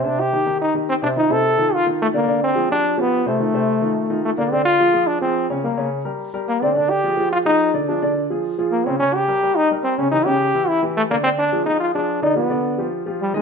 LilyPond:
<<
  \new Staff \with { instrumentName = "Upright piano" } { \time 4/4 \key f \dorian \tempo 4 = 214 <c c' c''>4 <ees ees' g'>8 <ees ees' g'>4 <ees ees' g'>4 <c c' c''>8 | <ees ees' f'>8 <c c' c''>4 <ees ees' f'>4 <ees ees' f'>4 <d d' d''>8 | <d d' d''>4 <f f' aes'>8 <f f' g'>4 <f f' g'>4 <c c' c''>8 | <ees ees' f'>8 <c c' c''>4 <ees ees' f'>4 <ees ees' f'>4 <d d' d''>8 |
<d d' d''>4 <f f' aes'>8 <f f' aes'>4 <f f' aes'>4 <des des' des''>8 | <g g' bes'>8 <des des' des''>4 <g g' bes'>4 <g g' bes'>4 <d d' d''>8 | <d d' d''>4 <f f' aes'>8 <f f' aes'>4 <f f' aes'>4 <d d' d''>8 | <f f' aes'>8 <d d' d''>4 <f f' aes'>4 <f f' aes'>4 <des des' des''>8 |
<des des' des''>4 <g g' bes'>8 <g g' bes'>4 <g g' bes'>4 <des des' des''>8 | <e e' g'>8 <cis cis' cis''>4 <e e' g'>4 <e e' g'>4 <d d' d''>8 | <d d' d''>4 <f f' aes'>8 <f f' aes'>4 <f f' aes'>4 <d d' d''>8 | <f f' g'>8 <d d' d''>4 <f f' g'>4 <f f' g'>4 <ees ees' ees''>8 | }
  \new Staff \with { instrumentName = "Trombone" } { \time 4/4 \key f \dorian d'8 g'4. ees'8 r8 c'8 d'8 | ees'8 a'4. f'8 r8 a8 bes8~ | bes8 c'4 d'4 b4 a8~ | a2. a8 bes8 |
c'8 f'4. d'8 c'4 r8 | bes4 r2 bes8 c'8 | d'8 g'4. f'8 ees'4 r8 | d'4 r2 bes8 c'8 |
des'8 g'4. ees'8 r8 c'8 des'8 | ees'8 g'4. e'8 r8 a8 ais8 | c'8 d'4 ees'8 f'8 d'4 ees'8 | b2 r4 g8 aes8 | }
>>